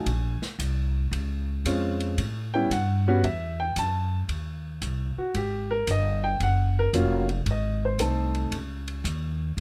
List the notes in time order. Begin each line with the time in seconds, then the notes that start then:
Already playing: G#5
0.06 A#1, ride
0.42 muted upright bass stroke, snare
0.59 C2, hi-hat pedal, ride
1.11 C#2, ride
1.65 F2 G#3 C4 C#4 F4, hi-hat pedal, ride
2.00 ride
2.18 A2, ride
2.54 G3 B3 C#4 E4 G5
2.70 G2 F#5, hi-hat pedal, ride
3.08 G3 B3 C#4 F#4
3.23 E2 E5, ride
3.60 G5
3.76 F#2 A5, hi-hat pedal, ride
4.28 D#2, ride
4.82 C2, hi-hat pedal, ride
5.17 F#4, muted upright bass stroke
5.34 G#1 G4, ride
5.71 A#4
5.87 G1 D#5, hi-hat pedal, ride
6.24 G5
6.40 F#1 F#5, ride
6.79 A#4
6.93 F1 F#3 A#3 C#4 F4, hi-hat pedal, ride
7.29 ride
7.46 G#1, ride
7.51 D#5
7.85 C5
7.98 C2 A3 C4 D#4 A4, hi-hat pedal, ride
8.35 ride
8.51 C#2, ride
8.88 ride
9.04 D#2, hi-hat pedal, ride
9.57 F2